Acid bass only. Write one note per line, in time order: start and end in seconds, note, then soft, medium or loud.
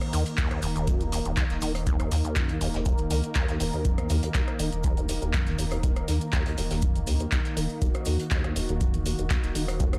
0.13 0.24 D#3 medium
0.38 0.49 D#2 medium
0.51 0.61 D#2 medium
0.63 0.67 D#2 medium
0.76 0.89 D#2 medium
0.87 1.02 F#2 medium
1.01 1.10 D#2 medium
1.12 1.20 D#2 medium
1.25 1.32 D#2 medium
1.37 1.44 D#2 medium
1.62 1.73 D#3 medium
1.87 1.97 D#2 loud
2.00 2.09 D#2 medium
2.12 2.16 D#2 medium
2.25 2.38 D#2 medium
2.36 2.51 F#2 medium
2.49 2.59 D#2 medium
2.61 2.68 D#2 medium
2.74 2.81 D#2 medium
2.86 2.93 D#2 medium
3.11 3.21 D#3 medium
3.35 3.46 D#2 loud
3.49 3.58 D#2 medium
3.60 3.65 D#2 medium
3.73 3.86 D#2 medium
3.85 4.00 F#2 medium
3.98 4.08 D#2 medium
4.10 4.17 D#2 medium
4.23 4.29 D#2 medium
4.35 4.42 D#2 medium
4.59 4.70 D#3 medium
4.84 4.95 D#2 loud
4.97 5.07 D#2 medium
5.09 5.13 D#2 medium
5.22 5.35 D#2 medium
5.34 5.48 F#2 medium
5.47 5.57 D#2 medium
5.59 5.66 D#2 medium
5.72 5.78 D#2 medium
5.83 5.91 D#2 medium
6.08 6.19 D#3 medium
6.33 6.44 D#2 medium
6.46 6.56 D#2 medium
6.58 6.62 D#2 medium
6.71 6.84 D#2 medium
6.82 6.97 F#2 medium
6.95 7.05 D#2 medium
7.07 7.14 D#2 medium
7.20 7.27 D#2 medium
7.32 7.39 D#2 medium
7.57 7.68 D#3 medium
7.82 7.89 D#2 medium
8.07 8.17 D#3 medium
8.31 8.42 D#2 loud
8.44 8.54 D#2 medium
8.56 8.60 D#2 medium
8.69 8.82 D#2 medium
8.81 8.95 F#2 medium
8.94 9.04 D#2 medium
9.06 9.13 D#2 medium
9.19 9.25 D#2 medium
9.30 9.38 D#2 medium
9.55 9.66 D#3 medium
9.80 9.91 D#2 loud
9.93 9.99 D#2 medium